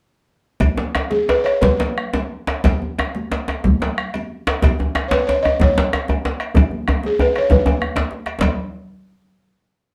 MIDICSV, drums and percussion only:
0, 0, Header, 1, 4, 480
1, 0, Start_track
1, 0, Key_signature, 5, "major"
1, 0, Tempo, 339367
1, 854, Time_signature, 12, 3, 24, 8
1, 4688, Tempo, 328228
1, 8048, Tempo, 314136
1, 11408, Tempo, 297767
1, 14848, End_track
2, 0, Start_track
2, 0, Title_t, "Bombo"
2, 857, Note_on_c, 9, 43, 88
2, 999, Note_off_c, 9, 43, 0
2, 1339, Note_on_c, 9, 37, 90
2, 1480, Note_off_c, 9, 37, 0
2, 1818, Note_on_c, 9, 37, 28
2, 1959, Note_off_c, 9, 37, 0
2, 2066, Note_on_c, 9, 37, 71
2, 2208, Note_off_c, 9, 37, 0
2, 2294, Note_on_c, 9, 43, 90
2, 2436, Note_off_c, 9, 43, 0
2, 2549, Note_on_c, 9, 37, 26
2, 2691, Note_off_c, 9, 37, 0
2, 2796, Note_on_c, 9, 37, 87
2, 2937, Note_off_c, 9, 37, 0
2, 3515, Note_on_c, 9, 37, 66
2, 3656, Note_off_c, 9, 37, 0
2, 3754, Note_on_c, 9, 43, 82
2, 3895, Note_off_c, 9, 43, 0
2, 4236, Note_on_c, 9, 37, 87
2, 4377, Note_off_c, 9, 37, 0
2, 4718, Note_on_c, 9, 37, 28
2, 4864, Note_off_c, 9, 37, 0
2, 4947, Note_on_c, 9, 37, 66
2, 5093, Note_off_c, 9, 37, 0
2, 5192, Note_on_c, 9, 43, 88
2, 5338, Note_off_c, 9, 43, 0
2, 5447, Note_on_c, 9, 37, 27
2, 5593, Note_off_c, 9, 37, 0
2, 5661, Note_on_c, 9, 37, 91
2, 5807, Note_off_c, 9, 37, 0
2, 6388, Note_on_c, 9, 37, 75
2, 6535, Note_off_c, 9, 37, 0
2, 6620, Note_on_c, 9, 43, 94
2, 6767, Note_off_c, 9, 43, 0
2, 7090, Note_on_c, 9, 37, 91
2, 7236, Note_off_c, 9, 37, 0
2, 7581, Note_on_c, 9, 37, 30
2, 7728, Note_off_c, 9, 37, 0
2, 7818, Note_on_c, 9, 37, 73
2, 7964, Note_off_c, 9, 37, 0
2, 8060, Note_on_c, 9, 43, 96
2, 8212, Note_off_c, 9, 43, 0
2, 8295, Note_on_c, 9, 37, 28
2, 8448, Note_off_c, 9, 37, 0
2, 8537, Note_on_c, 9, 37, 98
2, 8690, Note_off_c, 9, 37, 0
2, 9252, Note_on_c, 9, 37, 76
2, 9404, Note_off_c, 9, 37, 0
2, 9494, Note_on_c, 9, 43, 90
2, 9647, Note_off_c, 9, 43, 0
2, 9979, Note_on_c, 9, 37, 88
2, 10132, Note_off_c, 9, 37, 0
2, 10718, Note_on_c, 9, 37, 71
2, 10871, Note_off_c, 9, 37, 0
2, 10946, Note_on_c, 9, 37, 27
2, 10946, Note_on_c, 9, 43, 86
2, 11099, Note_off_c, 9, 37, 0
2, 11099, Note_off_c, 9, 43, 0
2, 11419, Note_on_c, 9, 37, 86
2, 11580, Note_off_c, 9, 37, 0
2, 11905, Note_on_c, 9, 37, 27
2, 12066, Note_off_c, 9, 37, 0
2, 12137, Note_on_c, 9, 37, 70
2, 12298, Note_off_c, 9, 37, 0
2, 12384, Note_on_c, 9, 43, 68
2, 12545, Note_off_c, 9, 43, 0
2, 14848, End_track
3, 0, Start_track
3, 0, Title_t, "Djembe"
3, 848, Note_on_c, 9, 62, 68
3, 848, Note_on_c, 9, 64, 67
3, 990, Note_off_c, 9, 62, 0
3, 990, Note_off_c, 9, 64, 0
3, 1094, Note_on_c, 9, 63, 55
3, 1096, Note_on_c, 9, 62, 68
3, 1235, Note_off_c, 9, 63, 0
3, 1237, Note_off_c, 9, 62, 0
3, 1348, Note_on_c, 9, 62, 73
3, 1489, Note_off_c, 9, 62, 0
3, 1567, Note_on_c, 9, 62, 53
3, 1708, Note_off_c, 9, 62, 0
3, 1825, Note_on_c, 9, 62, 70
3, 1966, Note_off_c, 9, 62, 0
3, 2288, Note_on_c, 9, 62, 77
3, 2288, Note_on_c, 9, 64, 75
3, 2301, Note_off_c, 9, 62, 0
3, 2301, Note_on_c, 9, 62, 72
3, 2429, Note_off_c, 9, 64, 0
3, 2443, Note_off_c, 9, 62, 0
3, 2534, Note_on_c, 9, 63, 54
3, 2543, Note_on_c, 9, 62, 73
3, 2676, Note_off_c, 9, 63, 0
3, 2685, Note_off_c, 9, 62, 0
3, 3017, Note_on_c, 9, 62, 59
3, 3021, Note_off_c, 9, 62, 0
3, 3021, Note_on_c, 9, 62, 72
3, 3162, Note_off_c, 9, 62, 0
3, 3498, Note_on_c, 9, 62, 76
3, 3639, Note_off_c, 9, 62, 0
3, 3733, Note_on_c, 9, 62, 74
3, 3733, Note_on_c, 9, 64, 78
3, 3748, Note_off_c, 9, 62, 0
3, 3748, Note_on_c, 9, 62, 70
3, 3874, Note_off_c, 9, 64, 0
3, 3890, Note_off_c, 9, 62, 0
3, 3987, Note_on_c, 9, 63, 61
3, 4128, Note_off_c, 9, 63, 0
3, 4226, Note_on_c, 9, 62, 67
3, 4367, Note_off_c, 9, 62, 0
3, 4451, Note_on_c, 9, 62, 58
3, 4592, Note_off_c, 9, 62, 0
3, 4689, Note_on_c, 9, 62, 71
3, 4835, Note_off_c, 9, 62, 0
3, 4930, Note_on_c, 9, 62, 64
3, 5076, Note_off_c, 9, 62, 0
3, 5165, Note_on_c, 9, 62, 72
3, 5165, Note_on_c, 9, 64, 73
3, 5311, Note_off_c, 9, 62, 0
3, 5311, Note_off_c, 9, 64, 0
3, 5400, Note_on_c, 9, 63, 53
3, 5424, Note_on_c, 9, 62, 72
3, 5546, Note_off_c, 9, 63, 0
3, 5571, Note_off_c, 9, 62, 0
3, 5895, Note_on_c, 9, 62, 54
3, 6041, Note_off_c, 9, 62, 0
3, 6378, Note_on_c, 9, 62, 91
3, 6524, Note_off_c, 9, 62, 0
3, 6602, Note_on_c, 9, 62, 67
3, 6602, Note_on_c, 9, 64, 70
3, 6604, Note_off_c, 9, 62, 0
3, 6604, Note_on_c, 9, 62, 69
3, 6748, Note_off_c, 9, 64, 0
3, 6750, Note_off_c, 9, 62, 0
3, 6846, Note_on_c, 9, 63, 52
3, 6857, Note_off_c, 9, 63, 0
3, 6857, Note_on_c, 9, 63, 73
3, 7003, Note_off_c, 9, 63, 0
3, 7079, Note_on_c, 9, 62, 74
3, 7226, Note_off_c, 9, 62, 0
3, 7315, Note_on_c, 9, 62, 53
3, 7317, Note_off_c, 9, 62, 0
3, 7317, Note_on_c, 9, 62, 96
3, 7463, Note_off_c, 9, 62, 0
3, 7576, Note_on_c, 9, 62, 72
3, 7722, Note_off_c, 9, 62, 0
3, 7818, Note_on_c, 9, 63, 70
3, 7964, Note_off_c, 9, 63, 0
3, 8024, Note_on_c, 9, 62, 70
3, 8024, Note_on_c, 9, 64, 76
3, 8050, Note_off_c, 9, 62, 0
3, 8050, Note_on_c, 9, 62, 73
3, 8176, Note_off_c, 9, 64, 0
3, 8203, Note_off_c, 9, 62, 0
3, 8260, Note_on_c, 9, 63, 51
3, 8299, Note_on_c, 9, 62, 98
3, 8413, Note_off_c, 9, 63, 0
3, 8452, Note_off_c, 9, 62, 0
3, 8537, Note_on_c, 9, 62, 69
3, 8690, Note_off_c, 9, 62, 0
3, 8765, Note_on_c, 9, 62, 56
3, 8781, Note_on_c, 9, 63, 72
3, 8918, Note_off_c, 9, 62, 0
3, 8934, Note_off_c, 9, 63, 0
3, 9025, Note_on_c, 9, 62, 70
3, 9178, Note_off_c, 9, 62, 0
3, 9479, Note_on_c, 9, 62, 73
3, 9479, Note_on_c, 9, 64, 74
3, 9511, Note_on_c, 9, 63, 90
3, 9632, Note_off_c, 9, 62, 0
3, 9632, Note_off_c, 9, 64, 0
3, 9664, Note_off_c, 9, 63, 0
3, 9731, Note_on_c, 9, 62, 24
3, 9731, Note_on_c, 9, 63, 58
3, 9883, Note_off_c, 9, 62, 0
3, 9883, Note_off_c, 9, 63, 0
3, 9993, Note_on_c, 9, 63, 93
3, 10146, Note_off_c, 9, 63, 0
3, 10220, Note_on_c, 9, 62, 59
3, 10373, Note_off_c, 9, 62, 0
3, 10464, Note_on_c, 9, 63, 88
3, 10616, Note_off_c, 9, 63, 0
3, 10929, Note_on_c, 9, 62, 74
3, 10929, Note_on_c, 9, 64, 74
3, 10940, Note_on_c, 9, 63, 89
3, 11082, Note_off_c, 9, 62, 0
3, 11082, Note_off_c, 9, 64, 0
3, 11092, Note_off_c, 9, 63, 0
3, 11160, Note_on_c, 9, 64, 36
3, 11174, Note_on_c, 9, 63, 98
3, 11313, Note_off_c, 9, 64, 0
3, 11327, Note_off_c, 9, 63, 0
3, 11408, Note_on_c, 9, 64, 46
3, 11569, Note_off_c, 9, 64, 0
3, 11642, Note_on_c, 9, 64, 49
3, 11655, Note_on_c, 9, 62, 85
3, 11803, Note_off_c, 9, 64, 0
3, 11816, Note_off_c, 9, 62, 0
3, 11885, Note_on_c, 9, 62, 52
3, 12046, Note_off_c, 9, 62, 0
3, 12129, Note_on_c, 9, 62, 56
3, 12290, Note_off_c, 9, 62, 0
3, 12371, Note_on_c, 9, 62, 98
3, 12375, Note_on_c, 9, 64, 75
3, 12532, Note_off_c, 9, 62, 0
3, 12536, Note_off_c, 9, 64, 0
3, 14848, End_track
4, 0, Start_track
4, 0, Title_t, "Drums"
4, 854, Note_on_c, 9, 63, 76
4, 854, Note_on_c, 9, 64, 81
4, 857, Note_on_c, 9, 56, 60
4, 995, Note_off_c, 9, 63, 0
4, 995, Note_off_c, 9, 64, 0
4, 999, Note_off_c, 9, 56, 0
4, 1335, Note_on_c, 9, 63, 23
4, 1341, Note_on_c, 9, 56, 48
4, 1476, Note_off_c, 9, 63, 0
4, 1483, Note_off_c, 9, 56, 0
4, 1577, Note_on_c, 9, 63, 58
4, 1719, Note_off_c, 9, 63, 0
4, 1827, Note_on_c, 9, 56, 48
4, 1968, Note_off_c, 9, 56, 0
4, 2061, Note_on_c, 9, 56, 45
4, 2202, Note_off_c, 9, 56, 0
4, 2314, Note_on_c, 9, 63, 75
4, 2314, Note_on_c, 9, 64, 73
4, 2455, Note_off_c, 9, 63, 0
4, 2455, Note_off_c, 9, 64, 0
4, 2544, Note_on_c, 9, 56, 43
4, 2685, Note_off_c, 9, 56, 0
4, 3019, Note_on_c, 9, 56, 43
4, 3035, Note_on_c, 9, 63, 63
4, 3160, Note_off_c, 9, 56, 0
4, 3176, Note_off_c, 9, 63, 0
4, 3506, Note_on_c, 9, 56, 48
4, 3648, Note_off_c, 9, 56, 0
4, 3734, Note_on_c, 9, 63, 77
4, 3734, Note_on_c, 9, 64, 80
4, 3744, Note_on_c, 9, 56, 56
4, 3876, Note_off_c, 9, 63, 0
4, 3876, Note_off_c, 9, 64, 0
4, 3885, Note_off_c, 9, 56, 0
4, 4219, Note_on_c, 9, 63, 25
4, 4222, Note_on_c, 9, 56, 45
4, 4360, Note_off_c, 9, 63, 0
4, 4363, Note_off_c, 9, 56, 0
4, 4466, Note_on_c, 9, 63, 60
4, 4607, Note_off_c, 9, 63, 0
4, 4698, Note_on_c, 9, 56, 47
4, 4845, Note_off_c, 9, 56, 0
4, 4945, Note_on_c, 9, 56, 40
4, 5091, Note_off_c, 9, 56, 0
4, 5184, Note_on_c, 9, 63, 74
4, 5184, Note_on_c, 9, 64, 73
4, 5330, Note_off_c, 9, 63, 0
4, 5330, Note_off_c, 9, 64, 0
4, 5430, Note_on_c, 9, 56, 42
4, 5577, Note_off_c, 9, 56, 0
4, 5894, Note_on_c, 9, 56, 47
4, 5917, Note_on_c, 9, 63, 59
4, 6040, Note_off_c, 9, 56, 0
4, 6063, Note_off_c, 9, 63, 0
4, 6385, Note_on_c, 9, 56, 47
4, 6531, Note_off_c, 9, 56, 0
4, 6618, Note_on_c, 9, 63, 75
4, 6618, Note_on_c, 9, 64, 75
4, 6627, Note_on_c, 9, 56, 60
4, 6764, Note_off_c, 9, 63, 0
4, 6764, Note_off_c, 9, 64, 0
4, 6774, Note_off_c, 9, 56, 0
4, 7094, Note_on_c, 9, 63, 23
4, 7240, Note_off_c, 9, 63, 0
4, 7328, Note_on_c, 9, 63, 58
4, 7474, Note_off_c, 9, 63, 0
4, 7575, Note_on_c, 9, 56, 46
4, 7721, Note_off_c, 9, 56, 0
4, 7810, Note_on_c, 9, 56, 43
4, 7956, Note_off_c, 9, 56, 0
4, 8048, Note_on_c, 9, 63, 65
4, 8048, Note_on_c, 9, 64, 73
4, 8201, Note_off_c, 9, 63, 0
4, 8201, Note_off_c, 9, 64, 0
4, 8300, Note_on_c, 9, 56, 42
4, 8453, Note_off_c, 9, 56, 0
4, 8788, Note_on_c, 9, 56, 46
4, 8789, Note_on_c, 9, 63, 57
4, 8941, Note_off_c, 9, 56, 0
4, 8942, Note_off_c, 9, 63, 0
4, 9260, Note_on_c, 9, 56, 49
4, 9413, Note_off_c, 9, 56, 0
4, 9503, Note_on_c, 9, 63, 73
4, 9503, Note_on_c, 9, 64, 74
4, 9508, Note_on_c, 9, 56, 58
4, 9656, Note_off_c, 9, 63, 0
4, 9656, Note_off_c, 9, 64, 0
4, 9661, Note_off_c, 9, 56, 0
4, 9986, Note_on_c, 9, 56, 48
4, 10004, Note_on_c, 9, 63, 22
4, 10138, Note_off_c, 9, 56, 0
4, 10156, Note_off_c, 9, 63, 0
4, 10239, Note_on_c, 9, 63, 54
4, 10392, Note_off_c, 9, 63, 0
4, 10480, Note_on_c, 9, 56, 48
4, 10632, Note_off_c, 9, 56, 0
4, 10711, Note_on_c, 9, 56, 42
4, 10721, Note_on_c, 9, 63, 21
4, 10864, Note_off_c, 9, 56, 0
4, 10874, Note_off_c, 9, 63, 0
4, 10959, Note_on_c, 9, 63, 71
4, 10959, Note_on_c, 9, 64, 73
4, 11112, Note_off_c, 9, 63, 0
4, 11112, Note_off_c, 9, 64, 0
4, 11191, Note_on_c, 9, 56, 46
4, 11344, Note_off_c, 9, 56, 0
4, 11415, Note_on_c, 9, 63, 22
4, 11576, Note_off_c, 9, 63, 0
4, 11642, Note_on_c, 9, 63, 52
4, 11647, Note_on_c, 9, 56, 51
4, 11804, Note_off_c, 9, 63, 0
4, 11808, Note_off_c, 9, 56, 0
4, 12146, Note_on_c, 9, 56, 50
4, 12307, Note_off_c, 9, 56, 0
4, 12373, Note_on_c, 9, 64, 75
4, 12396, Note_on_c, 9, 56, 70
4, 12534, Note_off_c, 9, 64, 0
4, 12557, Note_off_c, 9, 56, 0
4, 14848, End_track
0, 0, End_of_file